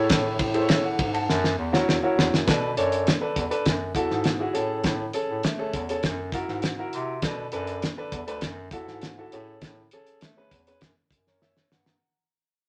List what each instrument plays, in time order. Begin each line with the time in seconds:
Already playing: grand piano E4 G#4 A4 C#5
0.09 bass clarinet A2, kick, snare, ride
0.39 bass clarinet A2, kick, ride
0.54 grand piano E4 G#4 A4 C5, ride
0.62 grand piano C#5
0.69 grand piano C#5 E5, snare, ride
0.84 grand piano F#5
0.99 bass clarinet G#2, kick, ride
1.14 grand piano F#5 A5, ride
1.28 bass clarinet F#2, snare
1.44 snare
1.58 bass clarinet E2
1.72 grand piano E4 F#4 A#4 C#5, snare
1.88 bass clarinet E2, snare
2.03 grand piano E4 F#4 A#4 C#5
2.17 bass clarinet E2, snare
2.32 bass clarinet F#2, snare
2.47 bass clarinet B2, grand piano D4 A4 B4, kick, snare, closed hi-hat
2.77 bass clarinet F#2, grand piano D4 A4 C#5, closed hi-hat
2.92 closed hi-hat
3.07 snare, closed hi-hat
3.21 grand piano D4 A4 B4
3.36 bass clarinet E2, kick, closed hi-hat
3.50 grand piano D4 A4 B4, closed hi-hat
3.66 bass clarinet F#2, kick, snare, closed hi-hat
3.95 bass clarinet E2, grand piano E4 F#4 A4, kick, closed hi-hat
4.10 bass clarinet G#2, snare
4.24 snare, closed hi-hat
4.40 grand piano E4 F#4 G#4
4.53 bass clarinet A2, grand piano C#4 G#4 A4, closed hi-hat
4.84 bass clarinet A2, kick, snare, closed hi-hat
5.14 grand piano C#4 G#4 A4, closed hi-hat
5.30 bass clarinet A2
5.43 bass clarinet A3, snare, closed hi-hat
5.59 grand piano C#4 G#4 A4
5.74 bass clarinet E2, kick, closed hi-hat
5.89 grand piano C#4 G#4 A4, closed hi-hat
6.03 bass clarinet F#2, kick, snare, closed hi-hat
6.32 bass clarinet F#2, grand piano E4 F#4 A#4, kick, closed hi-hat
6.48 bass clarinet G#2, snare
6.62 snare, closed hi-hat
6.78 grand piano E4 F#4 A#4
6.92 bass clarinet C3, closed hi-hat
7.22 bass clarinet B2, grand piano D4 A4 B4, kick, snare, closed hi-hat
7.52 bass clarinet F#2, grand piano D4 A4 B4, closed hi-hat
7.67 closed hi-hat
7.82 snare, closed hi-hat
7.97 grand piano D4 A4 B4
8.12 bass clarinet E2, kick, closed hi-hat
8.27 bass clarinet D2, grand piano D4 A4 B4, closed hi-hat
8.41 bass clarinet F#2, kick, snare, closed hi-hat
8.71 bass clarinet E2, grand piano E4 F#4 A4, kick, closed hi-hat
8.87 bass clarinet G#2, snare
9.01 snare, closed hi-hat
9.18 grand piano E4 F#4 A4
9.32 bass clarinet A2, grand piano C#4 G#4 A4, closed hi-hat
9.62 bass clarinet A2, kick, snare, closed hi-hat
9.91 grand piano C#4 G#4 A4, closed hi-hat
10.07 closed hi-hat
10.21 bass clarinet A3, snare, closed hi-hat
10.37 grand piano C#4 G#4 B4
10.51 bass clarinet E2, kick, closed hi-hat
10.67 grand piano C#4 G#4 B4, closed hi-hat
10.81 bass clarinet F#2, kick, snare, closed hi-hat
10.97 bass clarinet F#2
11.11 bass clarinet F#2, kick, closed hi-hat
11.27 grand piano A#4 C#5, snare
11.42 grand piano C#5 E5, snare
11.57 snare
11.71 bass clarinet G2, grand piano F#5, snare
11.86 grand piano A#5, snare